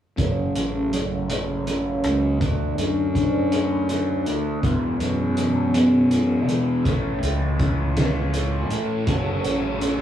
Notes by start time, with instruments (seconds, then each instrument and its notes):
0.17 fingered electric bass F#1, distorted electric guitar F#2 C#3 F#3, kick, closed hi-hat
0.56 fingered electric bass A1, closed hi-hat
0.92 distorted electric guitar F#2 C#3 F#3, closed hi-hat
1.28 distorted electric guitar F#2 C#3 F#3, closed hi-hat
1.66 distorted electric guitar F#2 C#3 F#3, closed hi-hat
2.04 fingered electric bass C#2, closed hi-hat
2.40 fingered electric bass D2, distorted electric guitar D3 A3 D4, kick, closed hi-hat
2.77 fingered electric bass F#2, closed hi-hat
3.14 distorted electric guitar D3 A3 D4, kick, closed hi-hat
3.51 distorted electric guitar D3 A3 D4, closed hi-hat
3.88 distorted electric guitar D3 A3 D4, closed hi-hat
4.26 fingered electric bass D2, closed hi-hat
4.62 distorted electric guitar E2 B2 E3, fingered electric bass E2, kick, closed hi-hat
5.00 fingered electric bass F#2, closed hi-hat
5.36 distorted electric guitar E2 B2 E3, closed hi-hat
5.73 distorted electric guitar E2 B2 E3, closed hi-hat
6.11 distorted electric guitar E2 B2 E3, closed hi-hat
6.48 fingered electric bass E3, closed hi-hat
6.85 fingered electric bass A1, distorted electric guitar A2 E3 A3, kick, closed hi-hat
7.21 fingered electric bass C#2, closed hi-hat
7.58 distorted electric guitar A2 E3 A3, kick, closed hi-hat
7.96 distorted electric guitar A2 E3 A3, snare, closed hi-hat
8.32 distorted electric guitar A2 E3 A3, closed hi-hat
8.70 fingered electric bass A2, closed hi-hat
9.06 fingered electric bass F#1, distorted electric guitar F#2 C#3 F#3, tonewheel organ C#4 F#4 A4, kick, closed hi-hat
9.44 fingered electric bass A1, closed hi-hat
9.80 distorted electric guitar F#2 C#3 F#3, closed hi-hat